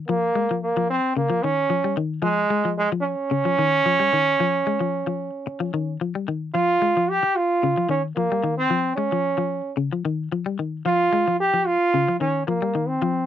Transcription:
0.07 clean electric guitar F3, trombone A#3
0.35 clean electric guitar G#3
0.51 clean electric guitar F3
0.62 trombone A#3
0.77 clean electric guitar F3
0.90 trombone C4
1.17 clean electric guitar C#3, trombone A#3
1.30 clean electric guitar F3
1.43 clean electric guitar D#3, trombone C#4
1.70 clean electric guitar F3
1.84 clean electric guitar G3
1.97 clean electric guitar D#3
2.22 clean electric guitar F3, trombone G#3
2.50 clean electric guitar G#3
2.65 clean electric guitar F3
2.78 trombone G#3
2.92 clean electric guitar F3
3.02 trombone C#4
3.31 clean electric guitar C#3
3.45 clean electric guitar F3
3.59 clean electric guitar D#3
3.86 clean electric guitar F3
4.00 clean electric guitar G3
4.13 clean electric guitar D#3
4.40 clean electric guitar F3
4.67 clean electric guitar G#3
4.81 clean electric guitar F3
5.07 clean electric guitar F3
5.47 muted clean electric guitar stroke
5.60 clean electric guitar F3
5.74 clean electric guitar D#3
6.01 clean electric guitar F3
6.15 clean electric guitar G3
6.28 clean electric guitar D#3
6.54 clean electric guitar F3, trombone F4
6.82 clean electric guitar G#3
6.97 clean electric guitar F3
7.10 trombone G4
7.23 muted clean electric guitar stroke
7.36 trombone F4
7.63 clean electric guitar C#3
7.77 clean electric guitar F3
7.89 clean electric guitar D#3, trombone C#4
8.16 clean electric guitar F3, trombone A#3
8.32 clean electric guitar G3
8.44 clean electric guitar D#3
8.58 trombone C4
8.70 clean electric guitar F3
8.96 clean electric guitar G#3, trombone C#4
9.12 clean electric guitar F3
9.38 clean electric guitar F3
9.77 clean electric guitar C#3
9.92 clean electric guitar F3
10.05 clean electric guitar D#3
10.32 clean electric guitar F3
10.46 clean electric guitar G3
10.59 clean electric guitar D#3
10.85 clean electric guitar F3, trombone F4
11.13 clean electric guitar G#3
11.28 clean electric guitar F3
11.40 trombone G4
11.54 clean electric guitar F3
11.66 trombone F4
11.94 clean electric guitar C#3
12.08 clean electric guitar F3
12.20 clean electric guitar D#3, trombone C#4
12.47 clean electric guitar F3, trombone A#3
12.62 clean electric guitar G3
12.75 clean electric guitar D#3
12.88 trombone C4
13.02 clean electric guitar F3

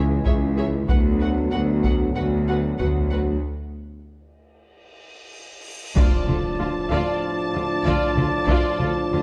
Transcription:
Already playing: cello section C#2, tuba C#2, double bass section C#2, trombone section E3 G#3, french horn section C#4 E4
0.25 tuba C#2, double bass section C#2, cello section C#2, viola section G#4, violin section C#5 E5, taiko
0.56 viola section G#4, violin section C#5 E5
0.88 tuba D2, cello section D2, double bass section D2, trombone section D3 F#3, french horn section B3 F#4, viola section F#4, violin section B4 F#5, taiko
1.20 viola section F#4, violin section B4 F#5
1.51 tuba D2, cello section D2, double bass section D2, viola section F#4, violin section B4 F#5
1.84 viola section F#4, violin section B4 F#5, taiko
2.15 tuba D2, double bass section D2, cello section D2, viola section F#4, violin section B4 F#5
2.47 viola section F#4, violin section B4 F#5
2.79 tuba D2, double bass section D2, cello section D2, viola section F#4, violin section B4 F#5, taiko
3.10 viola section F#4, violin section B4 F#5
3.43 cymbal swell
5.95 double bass section D2, tuba D2, trombone section A2 F3, cello section D3, french horn section D4 F4, viola section F4, trumpet D5, violin section D5 A5, taiko, impact
6.27 double bass section D2, tuba D2, cello section D3, viola section F4, violin section A4, taiko mid
6.58 double bass section D2, tuba D2, cello section D3, viola section F4, violin section F4
6.90 double bass section D2, tuba D2, cello section D3, viola section F4, violin section D5
7.54 double bass section D2, tuba D2, cello section D3, viola section F4, violin section F4
7.84 double bass section D2, tuba D2, cello section D3, viola section F4, violin section D5, taiko
8.15 double bass section D2, tuba D2, cello section D3, viola section F4, violin section A4, taiko mid
8.47 double bass section D2, tuba D2, cello section D3, viola section F4, violin section D5, taiko
8.78 double bass section D2, tuba D2, cello section D3, viola section F4, violin section A4, taiko mid
9.11 double bass section D2, tuba D2, cello section D3, viola section F4, violin section F4

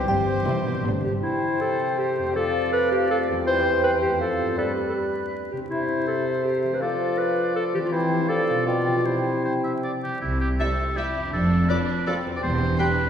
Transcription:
Already playing: harp C3 G3 C4
0.00 harp E4
0.07 double bass section G1, cello section G2, harp G2, french horn section G3, clarinet G4, oboe G4, flute section C5, violin section C5, music box G5
0.19 harp E3
0.29 harp G3
0.38 harp E4
0.47 cello section C3, viola section G3 C4, violin section E4, harp C5
0.57 harp G4
0.66 cello section B2, harp E5
0.76 harp C6
0.85 double bass section G1, harp G2, cello section A2, viola section G3 B3, violin section D4
0.96 harp D3
1.04 cello section G2, harp C3 G3, clarinet G4
1.11 harp G3
1.15 harp D4 E4
1.20 bassoon C3, clarinet E4, harp C5, oboe C5
1.24 flute section G5
1.61 clarinet A4
1.98 clarinet G4
2.18 harp F2
2.22 harp A3
2.27 harp F4
2.31 harp D5
2.36 bassoon F3, clarinet A4, oboe D5, flute section F5
2.73 clarinet B4
2.92 clarinet G4
3.10 clarinet A4
3.28 harp E2
3.33 harp G3
3.38 harp G4
3.42 harp C5
3.46 bassoon E3, clarinet C5, oboe C5, flute section G5
3.83 clarinet B4
4.02 harp F2, clarinet G4
4.07 harp A3
4.11 harp F4
4.16 harp C5
4.20 bassoon F3, clarinet A4, flute section F5
4.40 harp G2
4.44 harp B3
4.49 harp D4
4.53 harp G4
4.58 bassoon G3, clarinet A4, oboe B4, flute section D5
4.89 clarinet A4
4.95 clarinet G4
5.51 harp C3, clarinet G4
5.57 harp C4
5.61 harp E4
5.66 harp G4
5.70 bassoon C3, clarinet E4, oboe C5, flute section E5
6.07 clarinet A4
6.44 clarinet G4
6.64 harp F3
6.68 harp A3
6.72 harp D4, clarinet B4
6.77 harp A4, flute section F5
6.81 bassoon F3, clarinet A4, oboe D5
7.18 clarinet B4
7.56 clarinet A4
7.74 harp E3, clarinet G4
7.78 harp C4
7.83 harp E4, clarinet F4
7.87 harp G4
7.92 bassoon E3, clarinet E4, oboe C5, flute section G5
8.11 harp F3
8.16 harp C4
8.20 harp D4
8.25 harp F4, clarinet A4, oboe D5, flute section F5
8.29 bassoon F3
8.49 harp B2
8.53 harp G3
8.58 harp D4
8.62 bassoon B2, harp G4, oboe D5, flute section G5
8.67 clarinet F4
8.87 harp C3
8.92 harp G3
8.96 harp C4
9.01 clarinet E4, harp G4
9.05 bassoon C3, oboe C5, flute section G5
9.45 oboe C5
9.64 oboe E5
9.84 oboe D5
10.04 harp C3, oboe G4
10.09 harp G3
10.13 harp E4
10.17 oboe E4, harp G4
10.22 double bass section C2, cello section C3
10.41 oboe G4
10.59 viola section G3 E4, violin section C4 E5, oboe A4
10.95 viola section G3 E4, violin section E4 E5, oboe G4
11.15 harp F2
11.20 harp F3
11.24 harp D4
11.29 harp D5
11.33 double bass section F1, cello section F2, violin section D4, oboe A4
11.69 viola section F3 A4, violin section D4 D5, oboe B4
12.06 viola section F3 A4, violin section C4 D5, oboe A4
12.25 harp E2
12.29 harp G3
12.34 harp G4, oboe D5
12.38 harp C5
12.42 double bass section E1, cello section E2, oboe C5
12.78 viola section G3 G4, violin section D4 G5, oboe B4
12.98 harp F2
13.03 harp C4

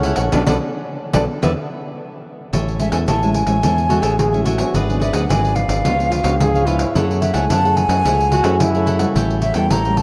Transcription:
Already playing: fingered electric bass C#2, nylon-string guitar C#3 A3 E4 G#4, trombone C#4
0.03 cavaquinho E4 A4 C#5 F#5, pandeiro
0.16 fingered electric bass A#1, nylon-string guitar D4 A4 C#5, cavaquinho A4 C#5 F#5, pandeiro
0.32 fingered electric bass B1, nylon-string guitar B3 D4 F#4, trombone D4, cavaquinho A4 B4 D5, pandeiro
0.47 fingered electric bass B1, nylon-string guitar B3 D4 F#4, trombone D4, cavaquinho A4 B4 D5, pandeiro
1.13 fingered electric bass B1, nylon-string guitar B3 D4 F#4, trombone D4, cavaquinho A4 B4 D5, pandeiro
1.42 fingered electric bass E2, trombone B3, nylon-string guitar B3 D4 E4, cavaquinho B4 D5 E5, pandeiro
2.53 fingered electric bass A1, nylon-string guitar A2, cavaquinho A4 C#5 E5 G#5, pandeiro
2.68 pandeiro
2.79 nylon-string guitar G#3 C#4 E4, cavaquinho A4 C#5 E5 G#5, flute E5, pandeiro
2.92 fingered electric bass E2, cavaquinho A4 C#5 E5 G#5, flute G#5, pandeiro
3.08 fingered electric bass A1, nylon-string guitar E3, cavaquinho A4 C#5 E5 G#5, flute A5, pandeiro
3.23 nylon-string guitar G#3 C#4 E4, cavaquinho C#5 E5 G#5, pandeiro
3.33 flute G#5, pandeiro
3.47 fingered electric bass A1, nylon-string guitar G#3 C#4 E4, cavaquinho C#5 E5 G#5, pandeiro
3.63 fingered electric bass E2, nylon-string guitar A2 G#3 C#4 E4, cavaquinho A4 C#5 E5 G#5, pandeiro
3.78 pandeiro
3.89 nylon-string guitar G#3 C#4 E4, trombone F#4, cavaquinho A4 C#5 E5 G#5, pandeiro
4.02 fingered electric bass A1, trombone G#4, cavaquinho A4 C#5 E5 G#5, pandeiro
4.19 nylon-string guitar E3, trombone G#4, pandeiro
4.33 nylon-string guitar G#3 C#4 E4, cavaquinho C#5 E5 G#5, pandeiro
4.45 trombone F#4, cavaquinho A4 C#5 E5 G#5, pandeiro
4.58 nylon-string guitar F#3 B3 D4, cavaquinho C#5 E5 G#5, pandeiro
4.74 fingered electric bass G#1, nylon-string guitar G#2, cavaquinho F#4 G#4 B4 D5, pandeiro
4.88 nylon-string guitar F#3 B3 D4, pandeiro
5.00 cavaquinho F#4 G#4 B4 D5, flute E5, pandeiro
5.13 fingered electric bass D2, nylon-string guitar F#3 B3 D4, cavaquinho F#4 G#4 B4 D5, flute F#5, pandeiro
5.29 fingered electric bass G#1, nylon-string guitar G#2, cavaquinho F#4 G#4 B4 D5, flute G#5, pandeiro
5.44 cavaquinho G#4 B4 D5, pandeiro
5.56 nylon-string guitar F#3 B3 D4, flute F5, pandeiro
5.68 fingered electric bass G#1, cavaquinho G#4 B4 D5, pandeiro
5.84 fingered electric bass C#2, nylon-string guitar C#3 F3 B3 D4, cavaquinho F4 B4 C#5 F5, pandeiro
5.99 nylon-string guitar F3 B3 D4, pandeiro
6.10 cavaquinho F4 B4 C#5 F5, trombone F4, pandeiro
6.22 fingered electric bass C#2, nylon-string guitar F3 B3 D4, cavaquinho F4 B4 C#5 F5, trombone F#4, pandeiro
6.39 nylon-string guitar G#2, trombone G#4, pandeiro
6.55 cavaquinho B4 C#5 F5, pandeiro
6.66 nylon-string guitar F3 B3 D4, trombone E4, cavaquinho F4 B4 C#5 F5, pandeiro
6.79 cavaquinho B4 C#5 F5, pandeiro
6.95 fingered electric bass F#2, nylon-string guitar F#3 A3 E4 G#4, cavaquinho E4 A4 C#5 F#5, pandeiro
7.11 pandeiro
7.21 cavaquinho E4 A4 C#5 F#5, flute E5, pandeiro
7.33 fingered electric bass C#2, nylon-string guitar A3 E4 G#4, cavaquinho E4 A4 C#5 F#5, flute G#5, pandeiro
7.50 fingered electric bass F#2, nylon-string guitar C#3, cavaquinho E4 A4 C#5 F#5, flute A5, pandeiro
7.64 nylon-string guitar A3 E4 G#4, cavaquinho A4 C#5 F#5, pandeiro
7.76 flute G#5, pandeiro
7.89 fingered electric bass F#2, cavaquinho A4 C#5 F#5, pandeiro
8.05 fingered electric bass C#2, nylon-string guitar F#3 A3 E4 G#4, cavaquinho E4 A4 C#5 F#5, pandeiro
8.20 pandeiro
8.32 cavaquinho E4 A4 C#5 F#5, trombone F#4, pandeiro
8.44 fingered electric bass F#2, nylon-string guitar A3 E4 G#4, cavaquinho E4 A4 C#5 F#5, pandeiro
8.60 nylon-string guitar C#3, trombone E4, pandeiro
8.74 nylon-string guitar A3 E4 G#4, cavaquinho A4 C#5 F#5, pandeiro
8.86 cavaquinho E4 A4 C#5 F#5, pandeiro
8.99 nylon-string guitar G3 A#3 C#4, cavaquinho A4 C#5 F#5, pandeiro
9.15 fingered electric bass A1, nylon-string guitar A2, cavaquinho E4 A4 C#5 G5, pandeiro
9.30 pandeiro
9.41 cavaquinho E4 A4 C#5 G5, flute E5, pandeiro
9.54 fingered electric bass E2, nylon-string guitar G3 A#3 C#4, cavaquinho E4 A4 C#5 G5, flute G5, pandeiro
9.70 fingered electric bass A1, nylon-string guitar E3, cavaquinho E4 A4 C#5 G5, flute A#5, pandeiro
9.85 nylon-string guitar G3 A#3 C#4, cavaquinho A4 C#5 G5, pandeiro
9.97 flute A5, pandeiro

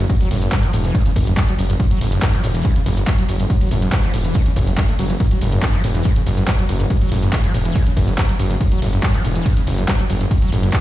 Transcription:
0.10 acid bass F#2, kick, closed hi-hat, ride
0.21 acid bass F#3, open hi-hat, ride
0.31 detuned saw bass F#1, acid bass A2, open hi-hat, ride
0.42 acid bass F#2, closed hi-hat, ride
0.52 acid bass G2, kick, clap, closed hi-hat, ride
0.63 acid bass F#3, closed hi-hat, ride
0.73 detuned saw bass E1, acid bass A2, open hi-hat, ride
0.84 acid bass E3, closed hi-hat, ride
0.95 acid bass F#2, kick, closed hi-hat, ride
1.06 acid bass C#3, closed hi-hat, ride
1.16 detuned saw bass F#1, acid bass F#2, kick, open hi-hat, ride
1.27 acid bass F#2, closed hi-hat, ride
1.37 acid bass F#3, kick, clap, closed hi-hat, ride
1.48 acid bass F#3, closed hi-hat, ride
1.58 detuned saw bass F#1, acid bass F#2, open hi-hat, ride
1.70 acid bass F#2, closed hi-hat, ride
1.80 acid bass F#2, kick, closed hi-hat, ride
1.91 acid bass F#3, closed hi-hat, ride
2.01 detuned saw bass F#1, acid bass A2, open hi-hat, ride
2.12 acid bass F#2, closed hi-hat, ride
2.22 acid bass G2, kick, clap, closed hi-hat, ride
2.33 acid bass F#3, clap, closed hi-hat, ride
2.43 detuned saw bass E1, acid bass A2, open hi-hat, ride
2.55 acid bass E3, closed hi-hat, ride
2.65 acid bass F#2, kick, closed hi-hat, ride
2.76 acid bass C#3, closed hi-hat, ride
2.86 detuned saw bass F#1, acid bass F#2, open hi-hat, ride
2.97 acid bass F#2, closed hi-hat, ride
3.07 acid bass F#3, kick, clap, closed hi-hat, ride
3.18 acid bass F#3, closed hi-hat, ride
3.29 detuned saw bass F#1, acid bass F#2, open hi-hat, ride
3.40 acid bass F#2, closed hi-hat, ride
3.50 acid bass F#2, kick, closed hi-hat, ride
3.61 acid bass F#3, open hi-hat, ride
3.71 detuned saw bass F#1, acid bass A2, open hi-hat, ride
3.82 acid bass F#2, closed hi-hat, ride
3.92 acid bass G2, kick, clap, closed hi-hat, ride
4.03 acid bass F#3, clap, closed hi-hat, ride
4.14 detuned saw bass E1, acid bass A2, open hi-hat, ride
4.25 acid bass E3, closed hi-hat, ride
4.35 acid bass F#2, kick, closed hi-hat, ride
4.46 acid bass C#3, closed hi-hat, ride
4.56 detuned saw bass F#1, acid bass A2, kick, open hi-hat, ride
4.67 acid bass F#2, closed hi-hat, ride
4.78 acid bass F#2, kick, clap, closed hi-hat, ride
4.89 acid bass A3, closed hi-hat, ride
4.99 detuned saw bass F#1, acid bass F#3, open hi-hat, ride
5.10 acid bass E3, closed hi-hat, ride
5.20 acid bass F#2, kick, closed hi-hat, ride
5.31 acid bass F#3, closed hi-hat, ride
5.41 detuned saw bass F#1, acid bass A2, open hi-hat, ride
5.52 acid bass F#2, closed hi-hat, ride
5.63 acid bass G2, kick, clap, closed hi-hat, ride
5.74 acid bass F#3, clap, closed hi-hat, ride
5.84 detuned saw bass E1, acid bass A2, open hi-hat, ride
5.95 acid bass E3, closed hi-hat, ride
6.05 acid bass F#2, kick, closed hi-hat, ride
6.16 acid bass C#3, closed hi-hat, ride
6.26 detuned saw bass F#1, acid bass F#2, open hi-hat, ride
6.37 acid bass F#2, closed hi-hat, ride
6.48 acid bass F#3, kick, clap, closed hi-hat, ride
6.59 acid bass F#3, closed hi-hat, ride
6.69 detuned saw bass F#1, acid bass F#2, open hi-hat, ride
6.80 acid bass F#2, closed hi-hat, ride
6.90 acid bass F#2, kick, closed hi-hat, ride
7.01 acid bass F#3, open hi-hat, ride
7.12 detuned saw bass F#1, acid bass A2, open hi-hat, ride
7.23 acid bass F#2, closed hi-hat, ride
7.33 acid bass G2, kick, clap, closed hi-hat, ride
7.44 acid bass F#3, closed hi-hat, ride
7.54 detuned saw bass E1, acid bass A2, open hi-hat, ride
7.65 acid bass E3, closed hi-hat, ride
7.75 acid bass F#2, kick, closed hi-hat, ride
7.86 acid bass C#3, closed hi-hat, ride
7.97 detuned saw bass F#1, acid bass F#2, kick, open hi-hat, ride
8.08 acid bass F#2, closed hi-hat, ride
8.18 acid bass F#3, kick, clap, closed hi-hat, ride
8.29 acid bass F#3, closed hi-hat, ride
8.39 detuned saw bass F#1, acid bass F#2, open hi-hat, ride
8.50 acid bass F#2, closed hi-hat, ride
8.61 acid bass F#2, kick, closed hi-hat, ride
8.72 acid bass F#3, closed hi-hat, ride
8.82 detuned saw bass F#1, acid bass A2, open hi-hat, ride
8.93 acid bass F#2, closed hi-hat, ride
9.03 acid bass G2, kick, clap, closed hi-hat, ride
9.14 acid bass F#3, clap, closed hi-hat, ride
9.24 detuned saw bass E1, acid bass A2, open hi-hat, ride
9.36 acid bass E3, closed hi-hat, ride
9.46 acid bass F#2, kick, closed hi-hat, ride
9.57 acid bass C#3, closed hi-hat, ride
9.67 detuned saw bass F#1, acid bass F#2, open hi-hat, ride
9.78 acid bass F#2, closed hi-hat, ride
9.88 acid bass F#3, kick, clap, closed hi-hat, ride
9.99 acid bass F#3, closed hi-hat, ride
10.10 detuned saw bass F#1, acid bass F#2, open hi-hat, ride
10.21 acid bass F#2, closed hi-hat, ride
10.31 acid bass F#2, kick, closed hi-hat, ride
10.42 acid bass F#3, open hi-hat, ride
10.52 detuned saw bass F#1, acid bass A2, open hi-hat, ride
10.63 acid bass F#2, closed hi-hat, ride
10.73 acid bass G2, kick, clap, closed hi-hat, ride

